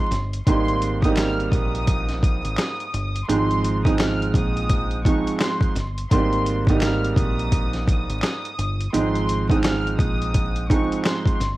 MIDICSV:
0, 0, Header, 1, 5, 480
1, 0, Start_track
1, 0, Key_signature, -4, "major"
1, 0, Tempo, 705882
1, 317, Time_signature, 4, 2, 24, 8
1, 7868, End_track
2, 0, Start_track
2, 0, Title_t, "Violin section"
2, 0, Program_c, 0, 48
2, 315, Note_on_c, 0, 84, 107
2, 678, Note_off_c, 0, 84, 0
2, 700, Note_on_c, 0, 87, 84
2, 786, Note_off_c, 0, 87, 0
2, 802, Note_on_c, 0, 89, 86
2, 1016, Note_off_c, 0, 89, 0
2, 1031, Note_on_c, 0, 87, 90
2, 1487, Note_off_c, 0, 87, 0
2, 1519, Note_on_c, 0, 87, 85
2, 2211, Note_off_c, 0, 87, 0
2, 2227, Note_on_c, 0, 84, 116
2, 2594, Note_off_c, 0, 84, 0
2, 2616, Note_on_c, 0, 87, 80
2, 2704, Note_off_c, 0, 87, 0
2, 2718, Note_on_c, 0, 89, 86
2, 2934, Note_off_c, 0, 89, 0
2, 2966, Note_on_c, 0, 87, 92
2, 3414, Note_off_c, 0, 87, 0
2, 3438, Note_on_c, 0, 85, 70
2, 3653, Note_off_c, 0, 85, 0
2, 3665, Note_on_c, 0, 84, 89
2, 3886, Note_off_c, 0, 84, 0
2, 4153, Note_on_c, 0, 84, 110
2, 4517, Note_off_c, 0, 84, 0
2, 4552, Note_on_c, 0, 87, 74
2, 4626, Note_on_c, 0, 89, 85
2, 4633, Note_off_c, 0, 87, 0
2, 4847, Note_off_c, 0, 89, 0
2, 4876, Note_on_c, 0, 87, 92
2, 5329, Note_off_c, 0, 87, 0
2, 5365, Note_on_c, 0, 87, 83
2, 6053, Note_off_c, 0, 87, 0
2, 6075, Note_on_c, 0, 84, 105
2, 6438, Note_off_c, 0, 84, 0
2, 6453, Note_on_c, 0, 87, 77
2, 6542, Note_off_c, 0, 87, 0
2, 6545, Note_on_c, 0, 89, 87
2, 6766, Note_off_c, 0, 89, 0
2, 6796, Note_on_c, 0, 87, 91
2, 7249, Note_off_c, 0, 87, 0
2, 7274, Note_on_c, 0, 85, 69
2, 7491, Note_off_c, 0, 85, 0
2, 7510, Note_on_c, 0, 84, 91
2, 7729, Note_off_c, 0, 84, 0
2, 7868, End_track
3, 0, Start_track
3, 0, Title_t, "Upright piano"
3, 0, Program_c, 1, 0
3, 323, Note_on_c, 1, 44, 93
3, 324, Note_on_c, 1, 55, 81
3, 326, Note_on_c, 1, 58, 89
3, 327, Note_on_c, 1, 60, 88
3, 328, Note_on_c, 1, 63, 98
3, 671, Note_off_c, 1, 44, 0
3, 671, Note_off_c, 1, 55, 0
3, 672, Note_off_c, 1, 58, 0
3, 673, Note_off_c, 1, 60, 0
3, 673, Note_off_c, 1, 63, 0
3, 712, Note_on_c, 1, 44, 93
3, 713, Note_on_c, 1, 55, 88
3, 714, Note_on_c, 1, 58, 83
3, 715, Note_on_c, 1, 60, 79
3, 716, Note_on_c, 1, 63, 102
3, 1918, Note_off_c, 1, 44, 0
3, 1919, Note_off_c, 1, 55, 0
3, 1919, Note_off_c, 1, 58, 0
3, 1920, Note_off_c, 1, 60, 0
3, 1921, Note_off_c, 1, 63, 0
3, 2231, Note_on_c, 1, 44, 94
3, 2233, Note_on_c, 1, 53, 88
3, 2234, Note_on_c, 1, 56, 88
3, 2235, Note_on_c, 1, 60, 92
3, 2236, Note_on_c, 1, 63, 105
3, 2584, Note_off_c, 1, 44, 0
3, 2585, Note_off_c, 1, 53, 0
3, 2586, Note_off_c, 1, 56, 0
3, 2586, Note_off_c, 1, 60, 0
3, 2587, Note_off_c, 1, 63, 0
3, 2618, Note_on_c, 1, 44, 91
3, 2620, Note_on_c, 1, 53, 84
3, 2621, Note_on_c, 1, 56, 85
3, 2622, Note_on_c, 1, 60, 83
3, 2623, Note_on_c, 1, 63, 99
3, 3382, Note_off_c, 1, 44, 0
3, 3383, Note_off_c, 1, 53, 0
3, 3383, Note_off_c, 1, 56, 0
3, 3384, Note_off_c, 1, 60, 0
3, 3384, Note_off_c, 1, 63, 0
3, 3433, Note_on_c, 1, 44, 92
3, 3435, Note_on_c, 1, 53, 82
3, 3436, Note_on_c, 1, 56, 72
3, 3438, Note_on_c, 1, 60, 84
3, 3438, Note_on_c, 1, 63, 94
3, 3885, Note_off_c, 1, 44, 0
3, 3886, Note_off_c, 1, 53, 0
3, 3886, Note_off_c, 1, 56, 0
3, 3887, Note_off_c, 1, 60, 0
3, 3887, Note_off_c, 1, 63, 0
3, 4162, Note_on_c, 1, 44, 92
3, 4164, Note_on_c, 1, 55, 83
3, 4164, Note_on_c, 1, 58, 92
3, 4166, Note_on_c, 1, 60, 88
3, 4167, Note_on_c, 1, 63, 94
3, 4510, Note_off_c, 1, 44, 0
3, 4511, Note_off_c, 1, 55, 0
3, 4511, Note_off_c, 1, 58, 0
3, 4512, Note_off_c, 1, 60, 0
3, 4512, Note_off_c, 1, 63, 0
3, 4552, Note_on_c, 1, 44, 92
3, 4554, Note_on_c, 1, 55, 87
3, 4555, Note_on_c, 1, 58, 83
3, 4556, Note_on_c, 1, 60, 80
3, 4557, Note_on_c, 1, 63, 103
3, 5758, Note_off_c, 1, 44, 0
3, 5759, Note_off_c, 1, 55, 0
3, 5760, Note_off_c, 1, 58, 0
3, 5760, Note_off_c, 1, 60, 0
3, 5761, Note_off_c, 1, 63, 0
3, 6070, Note_on_c, 1, 44, 93
3, 6072, Note_on_c, 1, 53, 88
3, 6072, Note_on_c, 1, 56, 86
3, 6073, Note_on_c, 1, 60, 90
3, 6074, Note_on_c, 1, 63, 106
3, 6424, Note_off_c, 1, 44, 0
3, 6425, Note_off_c, 1, 53, 0
3, 6425, Note_off_c, 1, 56, 0
3, 6425, Note_off_c, 1, 60, 0
3, 6426, Note_off_c, 1, 63, 0
3, 6459, Note_on_c, 1, 44, 93
3, 6460, Note_on_c, 1, 53, 79
3, 6462, Note_on_c, 1, 56, 84
3, 6463, Note_on_c, 1, 60, 84
3, 6464, Note_on_c, 1, 63, 98
3, 7222, Note_off_c, 1, 44, 0
3, 7223, Note_off_c, 1, 53, 0
3, 7223, Note_off_c, 1, 56, 0
3, 7224, Note_off_c, 1, 60, 0
3, 7225, Note_off_c, 1, 63, 0
3, 7274, Note_on_c, 1, 44, 95
3, 7276, Note_on_c, 1, 53, 83
3, 7277, Note_on_c, 1, 56, 77
3, 7278, Note_on_c, 1, 60, 82
3, 7279, Note_on_c, 1, 63, 98
3, 7725, Note_off_c, 1, 44, 0
3, 7726, Note_off_c, 1, 53, 0
3, 7727, Note_off_c, 1, 56, 0
3, 7727, Note_off_c, 1, 60, 0
3, 7728, Note_off_c, 1, 63, 0
3, 7868, End_track
4, 0, Start_track
4, 0, Title_t, "Fingered electric bass"
4, 0, Program_c, 2, 33
4, 78, Note_on_c, 2, 31, 92
4, 262, Note_off_c, 2, 31, 0
4, 319, Note_on_c, 2, 32, 115
4, 1011, Note_off_c, 2, 32, 0
4, 1032, Note_on_c, 2, 34, 91
4, 1633, Note_off_c, 2, 34, 0
4, 1664, Note_on_c, 2, 32, 91
4, 1736, Note_off_c, 2, 32, 0
4, 1998, Note_on_c, 2, 31, 96
4, 2182, Note_off_c, 2, 31, 0
4, 2238, Note_on_c, 2, 32, 110
4, 2930, Note_off_c, 2, 32, 0
4, 2953, Note_on_c, 2, 34, 96
4, 3553, Note_off_c, 2, 34, 0
4, 3918, Note_on_c, 2, 31, 87
4, 4103, Note_off_c, 2, 31, 0
4, 4159, Note_on_c, 2, 32, 113
4, 4851, Note_off_c, 2, 32, 0
4, 4873, Note_on_c, 2, 34, 92
4, 5473, Note_off_c, 2, 34, 0
4, 5504, Note_on_c, 2, 32, 93
4, 5576, Note_off_c, 2, 32, 0
4, 5838, Note_on_c, 2, 31, 98
4, 6022, Note_off_c, 2, 31, 0
4, 6079, Note_on_c, 2, 32, 112
4, 6770, Note_off_c, 2, 32, 0
4, 6793, Note_on_c, 2, 34, 93
4, 7393, Note_off_c, 2, 34, 0
4, 7758, Note_on_c, 2, 31, 93
4, 7868, Note_off_c, 2, 31, 0
4, 7868, End_track
5, 0, Start_track
5, 0, Title_t, "Drums"
5, 75, Note_on_c, 9, 38, 40
5, 80, Note_on_c, 9, 42, 84
5, 143, Note_off_c, 9, 38, 0
5, 148, Note_off_c, 9, 42, 0
5, 227, Note_on_c, 9, 42, 54
5, 295, Note_off_c, 9, 42, 0
5, 319, Note_on_c, 9, 36, 117
5, 320, Note_on_c, 9, 42, 108
5, 387, Note_off_c, 9, 36, 0
5, 388, Note_off_c, 9, 42, 0
5, 465, Note_on_c, 9, 42, 37
5, 533, Note_off_c, 9, 42, 0
5, 557, Note_on_c, 9, 42, 78
5, 625, Note_off_c, 9, 42, 0
5, 697, Note_on_c, 9, 36, 96
5, 707, Note_on_c, 9, 42, 57
5, 765, Note_off_c, 9, 36, 0
5, 775, Note_off_c, 9, 42, 0
5, 793, Note_on_c, 9, 39, 89
5, 797, Note_on_c, 9, 26, 66
5, 798, Note_on_c, 9, 42, 107
5, 799, Note_on_c, 9, 38, 113
5, 861, Note_off_c, 9, 39, 0
5, 865, Note_off_c, 9, 26, 0
5, 866, Note_off_c, 9, 42, 0
5, 867, Note_off_c, 9, 38, 0
5, 951, Note_on_c, 9, 42, 37
5, 1019, Note_off_c, 9, 42, 0
5, 1031, Note_on_c, 9, 36, 99
5, 1039, Note_on_c, 9, 42, 69
5, 1099, Note_off_c, 9, 36, 0
5, 1107, Note_off_c, 9, 42, 0
5, 1187, Note_on_c, 9, 42, 46
5, 1255, Note_off_c, 9, 42, 0
5, 1273, Note_on_c, 9, 42, 101
5, 1274, Note_on_c, 9, 36, 89
5, 1341, Note_off_c, 9, 42, 0
5, 1342, Note_off_c, 9, 36, 0
5, 1418, Note_on_c, 9, 42, 36
5, 1423, Note_on_c, 9, 38, 34
5, 1486, Note_off_c, 9, 42, 0
5, 1491, Note_off_c, 9, 38, 0
5, 1515, Note_on_c, 9, 36, 96
5, 1521, Note_on_c, 9, 42, 81
5, 1583, Note_off_c, 9, 36, 0
5, 1589, Note_off_c, 9, 42, 0
5, 1665, Note_on_c, 9, 42, 57
5, 1733, Note_off_c, 9, 42, 0
5, 1751, Note_on_c, 9, 39, 92
5, 1756, Note_on_c, 9, 42, 91
5, 1757, Note_on_c, 9, 38, 118
5, 1766, Note_on_c, 9, 26, 62
5, 1819, Note_off_c, 9, 39, 0
5, 1824, Note_off_c, 9, 42, 0
5, 1825, Note_off_c, 9, 38, 0
5, 1834, Note_off_c, 9, 26, 0
5, 1906, Note_on_c, 9, 42, 36
5, 1974, Note_off_c, 9, 42, 0
5, 1999, Note_on_c, 9, 42, 82
5, 2067, Note_off_c, 9, 42, 0
5, 2146, Note_on_c, 9, 42, 55
5, 2214, Note_off_c, 9, 42, 0
5, 2239, Note_on_c, 9, 42, 106
5, 2307, Note_off_c, 9, 42, 0
5, 2384, Note_on_c, 9, 42, 37
5, 2452, Note_off_c, 9, 42, 0
5, 2477, Note_on_c, 9, 42, 81
5, 2545, Note_off_c, 9, 42, 0
5, 2617, Note_on_c, 9, 36, 98
5, 2628, Note_on_c, 9, 42, 56
5, 2685, Note_off_c, 9, 36, 0
5, 2696, Note_off_c, 9, 42, 0
5, 2713, Note_on_c, 9, 39, 92
5, 2718, Note_on_c, 9, 26, 69
5, 2718, Note_on_c, 9, 42, 104
5, 2719, Note_on_c, 9, 38, 112
5, 2781, Note_off_c, 9, 39, 0
5, 2786, Note_off_c, 9, 26, 0
5, 2786, Note_off_c, 9, 42, 0
5, 2787, Note_off_c, 9, 38, 0
5, 2871, Note_on_c, 9, 42, 37
5, 2939, Note_off_c, 9, 42, 0
5, 2951, Note_on_c, 9, 36, 100
5, 2959, Note_on_c, 9, 42, 69
5, 3019, Note_off_c, 9, 36, 0
5, 3027, Note_off_c, 9, 42, 0
5, 3107, Note_on_c, 9, 42, 46
5, 3175, Note_off_c, 9, 42, 0
5, 3193, Note_on_c, 9, 42, 98
5, 3194, Note_on_c, 9, 36, 89
5, 3261, Note_off_c, 9, 42, 0
5, 3262, Note_off_c, 9, 36, 0
5, 3339, Note_on_c, 9, 42, 37
5, 3407, Note_off_c, 9, 42, 0
5, 3435, Note_on_c, 9, 36, 96
5, 3443, Note_on_c, 9, 42, 84
5, 3503, Note_off_c, 9, 36, 0
5, 3511, Note_off_c, 9, 42, 0
5, 3586, Note_on_c, 9, 42, 56
5, 3654, Note_off_c, 9, 42, 0
5, 3671, Note_on_c, 9, 39, 99
5, 3676, Note_on_c, 9, 42, 93
5, 3677, Note_on_c, 9, 38, 123
5, 3685, Note_on_c, 9, 26, 66
5, 3739, Note_off_c, 9, 39, 0
5, 3744, Note_off_c, 9, 42, 0
5, 3745, Note_off_c, 9, 38, 0
5, 3753, Note_off_c, 9, 26, 0
5, 3814, Note_on_c, 9, 36, 92
5, 3826, Note_on_c, 9, 42, 36
5, 3882, Note_off_c, 9, 36, 0
5, 3894, Note_off_c, 9, 42, 0
5, 3914, Note_on_c, 9, 38, 38
5, 3919, Note_on_c, 9, 42, 84
5, 3982, Note_off_c, 9, 38, 0
5, 3987, Note_off_c, 9, 42, 0
5, 4067, Note_on_c, 9, 42, 54
5, 4135, Note_off_c, 9, 42, 0
5, 4158, Note_on_c, 9, 36, 114
5, 4160, Note_on_c, 9, 42, 108
5, 4226, Note_off_c, 9, 36, 0
5, 4228, Note_off_c, 9, 42, 0
5, 4304, Note_on_c, 9, 42, 36
5, 4372, Note_off_c, 9, 42, 0
5, 4397, Note_on_c, 9, 42, 79
5, 4465, Note_off_c, 9, 42, 0
5, 4537, Note_on_c, 9, 36, 101
5, 4547, Note_on_c, 9, 42, 57
5, 4605, Note_off_c, 9, 36, 0
5, 4615, Note_off_c, 9, 42, 0
5, 4633, Note_on_c, 9, 39, 90
5, 4637, Note_on_c, 9, 26, 70
5, 4638, Note_on_c, 9, 42, 102
5, 4639, Note_on_c, 9, 38, 112
5, 4701, Note_off_c, 9, 39, 0
5, 4705, Note_off_c, 9, 26, 0
5, 4706, Note_off_c, 9, 42, 0
5, 4707, Note_off_c, 9, 38, 0
5, 4791, Note_on_c, 9, 42, 36
5, 4859, Note_off_c, 9, 42, 0
5, 4872, Note_on_c, 9, 36, 100
5, 4879, Note_on_c, 9, 42, 73
5, 4940, Note_off_c, 9, 36, 0
5, 4947, Note_off_c, 9, 42, 0
5, 5027, Note_on_c, 9, 42, 46
5, 5095, Note_off_c, 9, 42, 0
5, 5113, Note_on_c, 9, 42, 102
5, 5114, Note_on_c, 9, 36, 84
5, 5181, Note_off_c, 9, 42, 0
5, 5182, Note_off_c, 9, 36, 0
5, 5259, Note_on_c, 9, 42, 36
5, 5264, Note_on_c, 9, 38, 34
5, 5327, Note_off_c, 9, 42, 0
5, 5332, Note_off_c, 9, 38, 0
5, 5355, Note_on_c, 9, 36, 91
5, 5362, Note_on_c, 9, 42, 83
5, 5423, Note_off_c, 9, 36, 0
5, 5430, Note_off_c, 9, 42, 0
5, 5505, Note_on_c, 9, 42, 55
5, 5573, Note_off_c, 9, 42, 0
5, 5591, Note_on_c, 9, 39, 94
5, 5596, Note_on_c, 9, 42, 88
5, 5597, Note_on_c, 9, 38, 121
5, 5605, Note_on_c, 9, 26, 62
5, 5659, Note_off_c, 9, 39, 0
5, 5664, Note_off_c, 9, 42, 0
5, 5665, Note_off_c, 9, 38, 0
5, 5673, Note_off_c, 9, 26, 0
5, 5746, Note_on_c, 9, 42, 36
5, 5814, Note_off_c, 9, 42, 0
5, 5839, Note_on_c, 9, 42, 81
5, 5907, Note_off_c, 9, 42, 0
5, 5987, Note_on_c, 9, 42, 55
5, 6055, Note_off_c, 9, 42, 0
5, 6079, Note_on_c, 9, 42, 109
5, 6147, Note_off_c, 9, 42, 0
5, 6224, Note_on_c, 9, 42, 36
5, 6292, Note_off_c, 9, 42, 0
5, 6317, Note_on_c, 9, 42, 79
5, 6385, Note_off_c, 9, 42, 0
5, 6457, Note_on_c, 9, 36, 98
5, 6468, Note_on_c, 9, 42, 59
5, 6525, Note_off_c, 9, 36, 0
5, 6536, Note_off_c, 9, 42, 0
5, 6554, Note_on_c, 9, 39, 91
5, 6557, Note_on_c, 9, 26, 69
5, 6558, Note_on_c, 9, 42, 105
5, 6559, Note_on_c, 9, 38, 112
5, 6622, Note_off_c, 9, 39, 0
5, 6625, Note_off_c, 9, 26, 0
5, 6626, Note_off_c, 9, 42, 0
5, 6627, Note_off_c, 9, 38, 0
5, 6711, Note_on_c, 9, 42, 37
5, 6779, Note_off_c, 9, 42, 0
5, 6792, Note_on_c, 9, 36, 99
5, 6799, Note_on_c, 9, 42, 70
5, 6860, Note_off_c, 9, 36, 0
5, 6867, Note_off_c, 9, 42, 0
5, 6947, Note_on_c, 9, 42, 45
5, 7015, Note_off_c, 9, 42, 0
5, 7033, Note_on_c, 9, 42, 99
5, 7034, Note_on_c, 9, 36, 86
5, 7101, Note_off_c, 9, 42, 0
5, 7102, Note_off_c, 9, 36, 0
5, 7179, Note_on_c, 9, 42, 35
5, 7247, Note_off_c, 9, 42, 0
5, 7275, Note_on_c, 9, 36, 92
5, 7281, Note_on_c, 9, 42, 83
5, 7343, Note_off_c, 9, 36, 0
5, 7349, Note_off_c, 9, 42, 0
5, 7426, Note_on_c, 9, 42, 55
5, 7494, Note_off_c, 9, 42, 0
5, 7511, Note_on_c, 9, 39, 95
5, 7516, Note_on_c, 9, 42, 89
5, 7517, Note_on_c, 9, 38, 124
5, 7525, Note_on_c, 9, 26, 64
5, 7579, Note_off_c, 9, 39, 0
5, 7584, Note_off_c, 9, 42, 0
5, 7585, Note_off_c, 9, 38, 0
5, 7593, Note_off_c, 9, 26, 0
5, 7653, Note_on_c, 9, 36, 94
5, 7665, Note_on_c, 9, 42, 38
5, 7721, Note_off_c, 9, 36, 0
5, 7733, Note_off_c, 9, 42, 0
5, 7754, Note_on_c, 9, 38, 40
5, 7759, Note_on_c, 9, 42, 84
5, 7822, Note_off_c, 9, 38, 0
5, 7827, Note_off_c, 9, 42, 0
5, 7868, End_track
0, 0, End_of_file